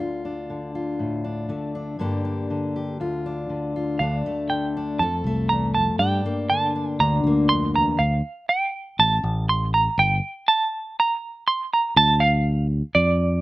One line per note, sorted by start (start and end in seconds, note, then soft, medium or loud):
0.00 1.98 D2 medium
0.00 0.25 D4 soft
0.00 0.74 F4 soft
0.25 1.24 D4 soft
0.50 1.47 D3 soft
0.75 1.97 F4 soft
0.99 1.49 A2 soft
1.24 1.75 D4 soft
1.49 1.98 D3 soft
1.49 1.96 A3 soft
1.75 2.00 D4 soft
1.99 2.96 G2 medium
1.99 2.49 D3 soft
1.99 2.97 A#3 soft
1.99 2.24 D4 soft
1.99 2.75 G4 soft
2.25 2.97 D4 soft
2.50 3.48 D3 soft
2.76 2.97 G4 soft
3.00 4.00 D2 medium
3.00 3.75 F4 medium
3.26 3.98 D4 soft
3.49 4.49 D3 soft
3.76 3.97 F4 soft
3.99 4.21 D2 medium
3.99 5.01 D2 medium
3.99 4.76 D4 soft
3.99 4.51 F5 medium
4.26 4.98 A3 soft
4.50 5.00 D3 soft
4.50 4.96 G5 medium
4.77 4.98 D4 soft
4.99 5.21 F2 medium
4.99 5.51 F2 medium
4.99 5.98 A4 medium
4.99 5.49 A5 medium
5.24 5.89 C2 medium
5.24 5.98 A3 soft
5.49 5.75 E2 medium
5.49 5.73 A#5 medium
5.75 6.00 F2 medium
5.75 5.98 A5 medium
5.99 6.21 G2 medium
5.99 7.50 G2 medium
5.99 6.75 D4 medium
5.99 6.46 G5 medium
6.26 7.25 A#3 soft
6.50 6.99 D3 medium
6.50 7.00 A5 medium
6.76 7.97 D4 soft
7.00 7.21 D2 medium
7.00 7.97 D3 medium
7.00 7.49 A#5 medium
7.24 7.88 D2 medium
7.24 7.97 A#3 medium
7.49 7.74 F2 medium
7.49 7.75 C6 medium
7.74 7.99 E2 medium
7.74 8.01 A#5 medium
7.99 8.20 D2 medium
7.99 8.49 F5 medium
8.49 9.00 G5 medium
8.99 9.20 A1 medium
8.99 9.49 A5 medium
9.23 9.87 A1 medium
9.49 9.72 C6 medium
9.74 9.99 A#5 medium
9.98 10.19 G1 medium
9.98 10.50 G5 medium
10.48 10.99 A5 medium
11.00 11.47 A#5 medium
11.48 11.72 C6 medium
11.73 11.95 A#5 medium
11.96 12.81 D2 loud
11.96 12.22 A5 loud
12.20 12.66 F5 loud
12.95 13.41 F2 medium
12.95 13.41 D5 medium